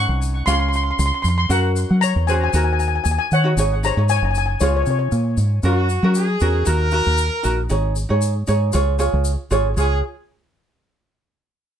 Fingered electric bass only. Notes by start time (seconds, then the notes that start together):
0.09 C2
0.47 C#2
0.99 C#2
1.24 F2
1.50 F#2
1.91 F#3
2.16 E2
2.54 D#2
3.05 D#2
3.32 D#3
3.57 G#1
3.97 G#2
4.22 F#1
4.61 C#2
4.87 C3
5.12 A#2
5.37 G#2
5.63 F#2
6.03 F#3
6.41 E2
6.67 D#2
7.06 D#2
7.45 A#1
7.71 G#1
8.10 G#2
8.48 G#2
8.74 C#2
9.13 C#2
9.51 G#1
9.77 C#2